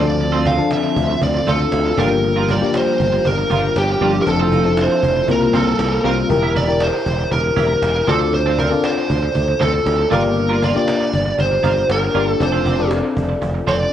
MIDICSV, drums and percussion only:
0, 0, Header, 1, 2, 480
1, 0, Start_track
1, 0, Key_signature, -1, "minor"
1, 0, Tempo, 508475
1, 188, Time_signature, 4, 2, 24, 8
1, 13149, End_track
2, 0, Start_track
2, 0, Title_t, "Cajon"
2, 187, Note_on_c, 9, 38, 51
2, 281, Note_off_c, 9, 38, 0
2, 428, Note_on_c, 9, 36, 104
2, 523, Note_off_c, 9, 36, 0
2, 667, Note_on_c, 9, 38, 121
2, 761, Note_off_c, 9, 38, 0
2, 909, Note_on_c, 9, 36, 95
2, 1004, Note_off_c, 9, 36, 0
2, 1027, Note_on_c, 9, 38, 28
2, 1121, Note_off_c, 9, 38, 0
2, 1147, Note_on_c, 9, 36, 94
2, 1242, Note_off_c, 9, 36, 0
2, 1388, Note_on_c, 9, 36, 105
2, 1482, Note_off_c, 9, 36, 0
2, 1505, Note_on_c, 9, 38, 27
2, 1599, Note_off_c, 9, 38, 0
2, 1626, Note_on_c, 9, 38, 102
2, 1720, Note_off_c, 9, 38, 0
2, 1868, Note_on_c, 9, 36, 101
2, 1962, Note_off_c, 9, 36, 0
2, 2107, Note_on_c, 9, 38, 48
2, 2201, Note_off_c, 9, 38, 0
2, 2348, Note_on_c, 9, 36, 99
2, 2442, Note_off_c, 9, 36, 0
2, 2587, Note_on_c, 9, 38, 116
2, 2681, Note_off_c, 9, 38, 0
2, 2831, Note_on_c, 9, 36, 92
2, 2925, Note_off_c, 9, 36, 0
2, 2950, Note_on_c, 9, 38, 28
2, 3044, Note_off_c, 9, 38, 0
2, 3068, Note_on_c, 9, 36, 92
2, 3163, Note_off_c, 9, 36, 0
2, 3308, Note_on_c, 9, 36, 102
2, 3403, Note_off_c, 9, 36, 0
2, 3428, Note_on_c, 9, 38, 27
2, 3523, Note_off_c, 9, 38, 0
2, 3550, Note_on_c, 9, 38, 102
2, 3644, Note_off_c, 9, 38, 0
2, 3788, Note_on_c, 9, 38, 35
2, 3883, Note_off_c, 9, 38, 0
2, 4028, Note_on_c, 9, 36, 104
2, 4122, Note_off_c, 9, 36, 0
2, 4268, Note_on_c, 9, 36, 98
2, 4362, Note_off_c, 9, 36, 0
2, 4505, Note_on_c, 9, 38, 115
2, 4599, Note_off_c, 9, 38, 0
2, 4749, Note_on_c, 9, 36, 97
2, 4843, Note_off_c, 9, 36, 0
2, 4864, Note_on_c, 9, 38, 28
2, 4959, Note_off_c, 9, 38, 0
2, 4986, Note_on_c, 9, 36, 96
2, 5080, Note_off_c, 9, 36, 0
2, 5226, Note_on_c, 9, 36, 101
2, 5321, Note_off_c, 9, 36, 0
2, 5345, Note_on_c, 9, 38, 29
2, 5439, Note_off_c, 9, 38, 0
2, 5466, Note_on_c, 9, 38, 112
2, 5560, Note_off_c, 9, 38, 0
2, 5946, Note_on_c, 9, 36, 106
2, 6040, Note_off_c, 9, 36, 0
2, 6186, Note_on_c, 9, 36, 97
2, 6281, Note_off_c, 9, 36, 0
2, 6423, Note_on_c, 9, 38, 116
2, 6517, Note_off_c, 9, 38, 0
2, 6666, Note_on_c, 9, 36, 95
2, 6761, Note_off_c, 9, 36, 0
2, 6785, Note_on_c, 9, 38, 28
2, 6879, Note_off_c, 9, 38, 0
2, 6905, Note_on_c, 9, 36, 94
2, 6999, Note_off_c, 9, 36, 0
2, 7144, Note_on_c, 9, 36, 107
2, 7239, Note_off_c, 9, 36, 0
2, 7264, Note_on_c, 9, 38, 29
2, 7358, Note_off_c, 9, 38, 0
2, 7387, Note_on_c, 9, 38, 113
2, 7481, Note_off_c, 9, 38, 0
2, 7626, Note_on_c, 9, 36, 107
2, 7721, Note_off_c, 9, 36, 0
2, 7865, Note_on_c, 9, 38, 51
2, 7960, Note_off_c, 9, 38, 0
2, 8105, Note_on_c, 9, 36, 102
2, 8200, Note_off_c, 9, 36, 0
2, 8343, Note_on_c, 9, 38, 119
2, 8437, Note_off_c, 9, 38, 0
2, 8589, Note_on_c, 9, 36, 93
2, 8683, Note_off_c, 9, 36, 0
2, 8708, Note_on_c, 9, 38, 28
2, 8803, Note_off_c, 9, 38, 0
2, 8826, Note_on_c, 9, 36, 94
2, 8921, Note_off_c, 9, 36, 0
2, 9067, Note_on_c, 9, 36, 100
2, 9161, Note_off_c, 9, 36, 0
2, 9185, Note_on_c, 9, 38, 30
2, 9280, Note_off_c, 9, 38, 0
2, 9311, Note_on_c, 9, 38, 104
2, 9405, Note_off_c, 9, 38, 0
2, 9549, Note_on_c, 9, 36, 109
2, 9643, Note_off_c, 9, 36, 0
2, 9790, Note_on_c, 9, 38, 49
2, 9884, Note_off_c, 9, 38, 0
2, 10029, Note_on_c, 9, 36, 103
2, 10124, Note_off_c, 9, 36, 0
2, 10268, Note_on_c, 9, 38, 122
2, 10363, Note_off_c, 9, 38, 0
2, 10510, Note_on_c, 9, 36, 91
2, 10605, Note_off_c, 9, 36, 0
2, 10632, Note_on_c, 9, 38, 27
2, 10726, Note_off_c, 9, 38, 0
2, 10749, Note_on_c, 9, 36, 98
2, 10843, Note_off_c, 9, 36, 0
2, 10989, Note_on_c, 9, 36, 102
2, 11083, Note_off_c, 9, 36, 0
2, 11107, Note_on_c, 9, 38, 28
2, 11201, Note_off_c, 9, 38, 0
2, 11231, Note_on_c, 9, 38, 111
2, 11325, Note_off_c, 9, 38, 0
2, 11471, Note_on_c, 9, 38, 35
2, 11565, Note_off_c, 9, 38, 0
2, 11708, Note_on_c, 9, 36, 108
2, 11803, Note_off_c, 9, 36, 0
2, 11947, Note_on_c, 9, 36, 98
2, 12042, Note_off_c, 9, 36, 0
2, 12183, Note_on_c, 9, 38, 124
2, 12278, Note_off_c, 9, 38, 0
2, 12429, Note_on_c, 9, 36, 89
2, 12523, Note_off_c, 9, 36, 0
2, 12547, Note_on_c, 9, 38, 27
2, 12641, Note_off_c, 9, 38, 0
2, 12666, Note_on_c, 9, 36, 91
2, 12760, Note_off_c, 9, 36, 0
2, 12906, Note_on_c, 9, 36, 98
2, 13001, Note_off_c, 9, 36, 0
2, 13027, Note_on_c, 9, 38, 28
2, 13121, Note_off_c, 9, 38, 0
2, 13149, End_track
0, 0, End_of_file